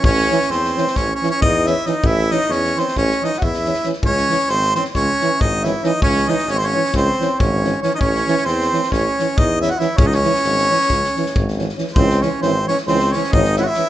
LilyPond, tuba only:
\new Staff \with { instrumentName = "Tuba" } { \clef bass \time 9/8 \key cis \minor \tempo 4. = 91 a,,4 e,4 a,,8 r8 e,4. | a,,4 e,4 a,,8 r8 e,4. | cis,4 gis,,4 cis,8 r8 gis,,4. | cis,4 gis,,4 cis,8 r8 gis,,4. |
a,,4 e,4 a,,8 r8 e,4. | cis,4 gis,,4 cis,8 r8 gis,,4. | cis,4 gis,,4 cis,4 gis,,4. | }